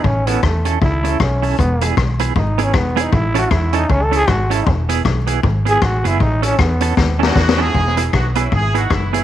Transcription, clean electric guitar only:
X:1
M:4/4
L:1/8
Q:"Swing" 1/4=156
K:E
V:1 name="Clean electric guitar"
z [CEA] z [CEA] z [CEA] z [CEA] | z [B,EG] z [B,EG] z [B,EG] z [B,EG] | z [CEA] z [CEA] z [CEA] z [CEA] | z [B,EG] z [B,EG] z [B,EG] z [B,EG] |
z [CEA] z [CEA] z [CEA] z [CEA] | z [B,EG] z [B,EG] z [B,EG] z [B,EG] |]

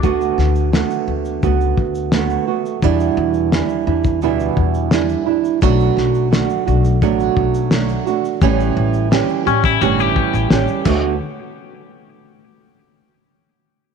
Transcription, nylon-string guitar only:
X:1
M:4/4
L:1/8
Q:1/4=86
K:D
V:1 name="Nylon-string guitar"
[D,A,B,F]2 [D,A,B,F]2 [A,B,F]2 [D,A,B,F] [A,B,F] | [E,,B,,E,G,DE]2 [E,G,DE] [E,G,DE] [E,,B,,E,G,DE]2 [E,G,DE] [E,G,DE] | [B,,F,A,DF]2 [F,A,DF] [A,DF] [B,,F,A,DF]2 [F,A,DF] [A,DF] | [A,,E,G,CG]2 [E,G,CG] [G,CG] [A,,E,G,CG]2 [E,G,CG] [D,A,B,F] |
z8 |]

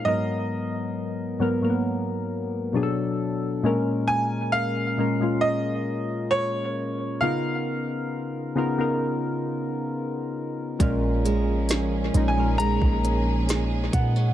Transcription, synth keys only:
X:1
M:4/4
L:1/16
Q:1/4=67
K:A#phr
V:1 name="Synth keys"
[G,,F,B,A]4 z2 [G,,F,B,A] [G,,F,A,B,A]4- [G,,F,A,B,A] [B,,F,=DG=A]3 z | [A,,G,CA]4 z2 [A,,G,CA] [A,,G,CE]6 z3 | [C,B,DEA]4 z2 [C,B,DEA] [C,B,DEA]6 z3 | [A,,G,CA]4 z2 [A,,G,CD] [A,,G,CA]6 z3 |]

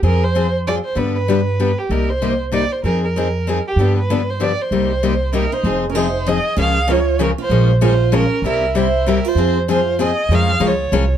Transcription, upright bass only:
X:1
M:3/4
L:1/8
Q:"Swing" 1/4=193
K:Cm
V:1 name="Upright bass" clef=bass
F,,6 | G,,6 | C,,6 | F,,6 |
G,,6 | C,,6 | [K:Fm] F,,,6 | D,,6 |
B,,,6 | C,,6 | F,,6 | F,,2 D,,2 C,,2 |]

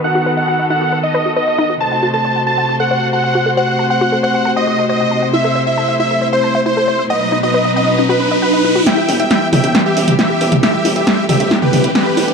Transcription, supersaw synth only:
X:1
M:4/4
L:1/16
Q:1/4=136
K:Em
V:1 name="Supersaw synth"
f3 f3 f3 ^d3 d3 z | a3 a3 a3 f3 f3 z | f3 f3 f3 ^d3 d3 z | e3 e3 e3 c3 c3 z |
^d3 d3 d3 B3 B3 z | [eg]3 [eg]3 [eg]3 [Ge]3 [Ge]3 z | [Ge]3 [Ge]3 [Ge]3 [GB]3 [GB]3 z |]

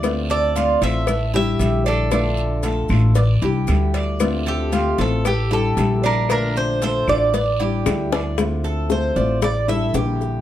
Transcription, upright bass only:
X:1
M:4/4
L:1/8
Q:1/4=115
K:Dm
V:1 name="Upright bass" clef=bass
D,,3 A,,,3 B,,,2- | B,,,3 A,,,2 C,, D,,2- | D,,3 A,,,3 B,,,2- | B,,,3 A,,,3 D,,2- |
D,,3 A,,,3 B,,,2 |]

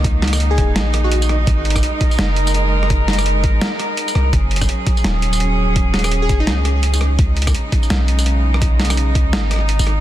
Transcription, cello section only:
X:1
M:4/4
L:1/8
Q:"Swing 16ths" 1/4=168
K:Abdor
V:1 name="Cello section"
[E,B,E]8 | [A,B]8- | [A,B]8 | [G,DA]8- |
[G,DA]8 | [D,A,E]8- | [D,A,E]8 |]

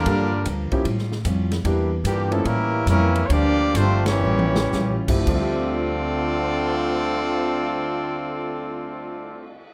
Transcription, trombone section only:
X:1
M:4/4
L:1/8
Q:"Swing" 1/4=124
K:Dm
V:1 name="Trombone section" clef=bass
[D,F,B,]2 z6 | z2 [B,,D,G,] A, [E,G,B,]2 [E,G,B,]2 | [F,B,D]2 C [E,G,^C]4 z | [D,A,CF]8- |
[D,A,CF]8 |]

